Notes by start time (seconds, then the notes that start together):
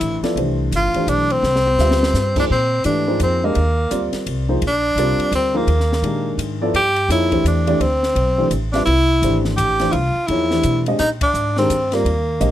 Already playing: E3 A3 D4 E4 G4 C5
0.01 A1, hi-hat pedal, ride
0.23 F3 B3 E4 A4 D5, muted upright bass stroke, snare, ride
0.36 C2 E3 A3 D4 G4 C5, ride
0.72 G1, hi-hat pedal, ride
0.76 F4
0.94 E3 A3 D4 G4 C5, muted upright bass stroke, ride
1.07 B1 D4, hi-hat pedal, ride
1.30 C4, ride
1.43 C2, snare
1.56 snare
1.67 high tom
1.78 D2 G3 C4 F4 B4 E5, snare, hi-hat pedal
1.91 snare
2.03 snare
2.14 G2, snare, hi-hat pedal
2.36 F3 A#3 D4 D#4 G#4 C5, kick, crash
2.50 A#2 C4
2.84 G#2 E3 A3 D4 G4 B4, hi-hat pedal, ride
3.07 F3 A#3 D#4 G#4 C5
3.20 F2 C4, hi-hat pedal, ride
3.43 G#3 A#3 D4 G4 C5 D#5
3.55 D#2, ride
3.91 D2 G3 C4 F4 A#4 D5, hi-hat pedal, ride
4.13 muted upright bass stroke, snare, ride
4.27 C2, ride
4.49 F3 A#3 D#4 G#4 C5
4.62 A#1, ride
4.67 D4
4.96 C2 G3 C4 F4 A#4 D5, hi-hat pedal, ride
5.18 muted upright bass stroke, ride
5.32 D2 C4, hi-hat pedal, ride
5.54 F3 A#3 D#4 G#4 C5
5.67 D#2, ride
5.80 snare
5.92 snare
6.03 A#2 D#3 G#3 D4 G4 A#4, ride
6.38 G#2, hi-hat pedal, ride
6.61 F3 B3 E4 A4 D5
6.74 G2 G4, ride
6.96 ride
7.09 F2 F3 A#3 D#4 E4 G#4 C#5, hi-hat pedal, ride
7.32 E3 A3 D4 G4 C5, kick, ride
7.44 E2 D4, hi-hat pedal, ride
7.67 E3 A3 D4 G4 D5, ride
7.80 D2 C4, ride
8.03 snare
8.15 B1, ride
8.38 E3 A3 D4 G4 C5
8.51 A1, hi-hat pedal, ride
8.72 G3 C4 D4 F4 B4 E5, snare, ride
8.85 C2 E4, ride
9.22 G#1 E3 A3 D4 G4 C5, hi-hat pedal, ride
9.45 snare
9.56 A1 G4, hi-hat pedal, ride
9.79 E3 A3 D4 G4 C5, snare, ride
9.91 C2 E4 F4, ride
10.15 muted upright bass stroke
10.28 E2 F3 A#3 D#4 E4 G#4 C#5, ride
10.51 E3 A3 D4 G4 C5, snare
10.63 B2, hi-hat pedal, ride
10.86 G#3 D4 G4 C5 D#5, ride
10.99 A#2 D#4, snare, ride
11.21 D4, kick, ride
11.34 G#2, hi-hat pedal
11.57 D#3 G#3 C4 D4 G4 A#4, snare
11.70 G2, hi-hat pedal, ride
11.92 G3 A#3 C4 F4 A#4 D5, snare, ride
12.05 D#2, ride
12.40 A#1 D3 G#3 G4 C5 D#5, hi-hat pedal, ride